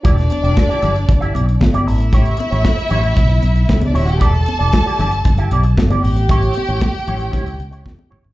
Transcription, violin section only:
\new Staff \with { instrumentName = "Violin section" } { \time 4/4 \key e \dorian \tempo 4 = 115 <d' d''>2. r8 <e' e''>8~ | <e' e''>2.~ \tuplet 3/2 { <e' e''>16 r16 <d' d''>16 <e' e''>16 <fis' fis''>16 <g' g''>16 } | <a' a''>2. r8 <g' g''>8~ | <g' g''>2.~ <g' g''>8 r8 | }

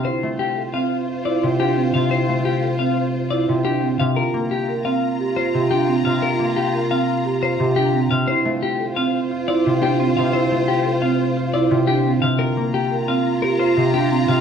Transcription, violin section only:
\new Staff \with { instrumentName = "Violin section" } { \time 6/4 \key d \minor \tempo 4 = 175 <f' c''>1.~ | <f' c''>1~ <f' c''>4. r8 | <f' bes''>1.~ | <f' bes''>1~ <f' bes''>4. r8 |
<f' c''>1.~ | <f' c''>1~ <f' c''>4. r8 | <f' bes''>1. | }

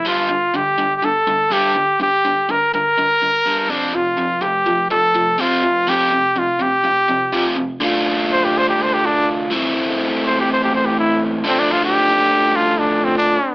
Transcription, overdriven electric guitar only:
\new Staff \with { instrumentName = "Overdriven electric guitar" } { \clef bass \time 4/4 \key g \dorian \tempo 4 = 124 <g, d g>8 <g, d>8 <g, d>8 <g, d>8 <g, d>8 <g, d>8 <g, d g>8 <g, d>8 | <g, d>8 <g, d>8 <g, d>8 <g, d>8 <g, d>8 <g, d>8 <g, d g>8 <c f c'>8 | <c f>8 <c f>8 <c f>8 <c f>8 <c f>8 <c f>8 <c f c'>8 <c f>8 | <f, c f>8 <f, c>8 <f, c>8 <f, c>8 <f, c>8 <f, c>8 <f, c f>8 <f, c>8 |
<d a d' f'>2.~ <d a d' f'>8 <a, e a c' e'>8~ | <a, e a c' e'>2.~ <a, e a c' e'>8 <d f a d'>8~ | <d f a d'>2.~ <d f a d'>8 r8 | }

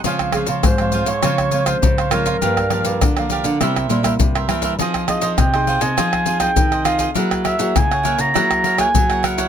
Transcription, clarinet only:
\new Staff \with { instrumentName = "Clarinet" } { \time 4/4 \key f \minor \tempo 4 = 101 r8 aes'8 c''8. des''4 c''8. bes'8~ | bes'4. r2 r8 | r8 ees''8 g''8. aes''4 g''8. f''8 | r8 fes''8 aes''8. bes''4 aes''8. ges''8 | }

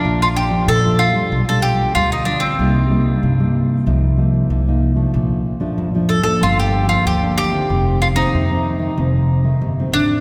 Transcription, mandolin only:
\new Staff \with { instrumentName = "Mandolin" } { \time 4/4 \key bes \major \tempo 4 = 94 d'16 f'16 g'8 a'8 f'8. a'16 g'8 f'16 ees'16 d'16 c'16~ | c'8. r2. r16 | r4. a'16 a'16 f'16 g'8 f'16 g'8 g'8~ | g'8 f'16 ees'2~ ees'8. d'8 | }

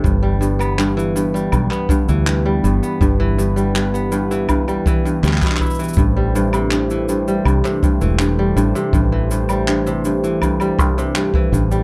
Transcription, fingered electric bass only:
\new Staff \with { instrumentName = "Fingered electric bass" } { \clef bass \time 4/4 \key a \minor \tempo 4 = 81 g,,2 b,,16 r8 d,8. g,,16 r16 | g,,2~ g,,8 b,,8 d,16 r8. | a,,2 c,16 r8 e,,8. a,,16 r16 | a,,2~ a,,8 c,4 a,,8 | }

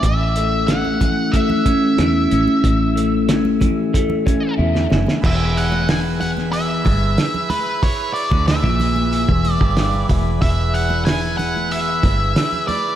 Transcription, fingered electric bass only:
\new Staff \with { instrumentName = "Fingered electric bass" } { \clef bass \time 4/4 \key e \mixolydian \tempo 4 = 92 a,,2 r4 e,8 a,,16 r16 | a,,2 r4 e,8 fis,,16 r16 | e,,2~ e,,8 g,,8 r4 | r8. d,8 ais,,4 e,,8 g,,8. e,,8 |
e,,2~ e,,8 g,,8 r4 | }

